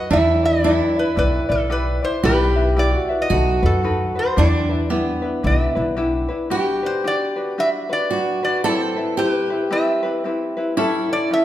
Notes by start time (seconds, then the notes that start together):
Already playing: F#4 B4 D#5 F#5
0.10 E2 E4 G4 B4 D5 E5
0.43 E4 B4 D5
0.64 E4 G4 B4 D5
0.95 E4 B4 D5
0.99 B4
1.16 B1 E4 G4 B4 D5
1.49 B1 E4 A4 B4 D5
1.70 E4 G4 B4 D5
2.02 E4 B4 C5 D5
2.23 B1 E4 G4 B4 E5
2.56 E4 B4 E5
2.76 E4 G4 B4 D5 E5
2.92 F#4
3.09 E4 B4 E5
3.22 D#5
3.30 B1 D#4 F#4 A4 B4
3.62 F#2 D#4 F#4 A4 B4
3.83 D#4 F#4 A4 B4
4.15 D#4 F#4 B4 C5
4.36 E2 D4 E4 G4 B4 D5
4.69 D4 E4 B4
4.90 B3 D4 E4 G4 B4
5.22 D4 E4 B4
5.43 B1 D4 E4 G4 B4 E5
5.75 B1 D4 E4 B4
5.96 D4 E4 G4 B4
6.29 D4 E4 B4
6.50 D4 F#4 G4 B4
6.83 D4 F#4 B4 C5
7.04 D4 F#4 G4 B4 D5
7.36 D4 F#4 B4
7.58 D4 F#4 G4 B4 E5
7.89 D4 F#4 B4 D5
8.10 D4 F#4 G4 B4
8.43 D4 F#4 B4 D5
8.64 C4 E4 G4 A4 B4 C5
8.96 C4 E4 B4
9.17 C4 E4 G4 B4 C5
9.30 B4
9.50 C4 E4 B4
9.71 C4 E4 G4 B4 E5
10.03 C4 E4 B4
10.24 C4 E4 G4 B4
10.57 C4 E4 B4
10.77 C#4 E4 G4 A4
11.09 C#4 E4 A4 D5
11.31 C#4 E4 G4 A4 E5